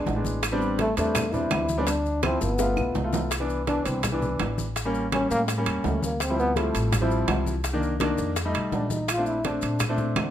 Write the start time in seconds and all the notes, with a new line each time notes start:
Already playing: D4
0.06 A1, high bongo, low bongo, high conga, low timbale, maracas
0.16 G#3 B3 D4
0.25 high bongo, high conga, maracas
0.43 high bongo, high conga, high timbale, claves, maracas
0.52 G3 B3 C4 D4
0.61 high conga, maracas
0.79 A3, high bongo, high conga, high timbale, low timbale, maracas
0.97 E2 G3 A3 B3 C4 D4, high bongo, high conga, high timbale, maracas
1.15 high bongo, high conga, low conga, high timbale, claves, maracas
1.33 G3 B3 C4 D4 E4, high bongo, high conga, low conga, maracas
1.51 D2, high bongo, low bongo, high conga, high timbale, low timbale, claves, maracas
1.69 high bongo, high conga, maracas
1.78 G3 B3 C4 C#4 D4
1.87 D4, high bongo, high conga, high timbale, maracas
2.06 high conga, maracas
2.23 F3 C4 E4, high bongo, high conga, high timbale, low timbale, claves, maracas
2.41 G1 B3, high bongo, high conga, maracas
2.59 A3 B3 F4, high bongo, high conga, high timbale, maracas
2.77 B1, low bongo, high conga, claves, maracas
2.95 C2, low bongo, high conga, low timbale, maracas
3.04 A3 B3 F4
3.13 low bongo, high conga, low timbale, maracas
3.31 high bongo, high timbale, maracas
3.40 E3 B3 D4
3.50 high conga, maracas
3.67 E3 B3 D4, high bongo, high conga, high timbale, low timbale, maracas
3.85 C2 C4, high bongo, high conga, high timbale, maracas
4.03 high bongo, high conga, low conga, high timbale, maracas
4.12 E3 B3 D4
4.22 high bongo, high conga, low conga, maracas
4.40 A1, high bongo, low bongo, high conga, high timbale, low timbale, maracas
4.58 high bongo, high conga, maracas
4.76 high bongo, high conga, high timbale, maracas
4.85 G3 A#3 C#4
4.94 high conga, maracas
5.12 G3 A#3 C#4, high bongo, high conga, high timbale, low timbale, maracas
5.30 A2 A#3, high bongo, high conga, maracas
5.48 high bongo, high conga, high timbale, maracas
5.58 G3 A#3 C#4
5.66 E2, high bongo, high conga, high timbale, maracas
5.84 D2 A3, high bongo, low bongo, high conga, low timbale, maracas
6.02 A#3, high bongo, high conga, maracas
6.20 C4, high bongo, high conga, high timbale, maracas
6.30 F3 G3 C4 E4
6.38 B3, high conga, maracas
6.56 F3 G3 A3 C4 E4, high bongo, high conga, high timbale, low timbale, maracas
6.74 A1, high bongo, high conga, high timbale, maracas
6.92 high bongo, high conga, low conga, high timbale, maracas
7.01 F3 G3 C4 E4
7.10 high bongo, high conga, maracas
7.28 C2, high bongo, low bongo, high conga, high timbale, low timbale, maracas
7.46 high bongo, high conga, maracas
7.64 high bongo, high conga, high timbale, maracas
7.73 D#3 A#3 D4
7.82 high conga, maracas
8.00 D#3 A#3 D4, high bongo, high conga, high timbale, low timbale, maracas
8.18 F2, high bongo, high conga, maracas
8.36 high bongo, high conga, high timbale, maracas
8.45 G3 A3 D#4
8.54 B1, high bongo, high conga, high timbale, maracas
8.72 A#1 D4, high bongo, low bongo, high conga, low timbale, maracas
8.90 D#4, high bongo, high conga, maracas
9.08 F4, high bongo, high conga, high timbale, claves, maracas
9.17 A3 C4 D4
9.26 E4, high conga, maracas
9.44 A3 C4 D4, high bongo, high conga, high timbale, low timbale, maracas
9.62 A#2, high bongo, high conga, high timbale, maracas
9.80 high bongo, high conga, low conga, high timbale, claves, maracas
9.89 A3 C4 D4
9.98 high bongo, high conga, low conga, maracas
10.16 D2, high bongo, low bongo, high conga, high timbale, low timbale, claves, maracas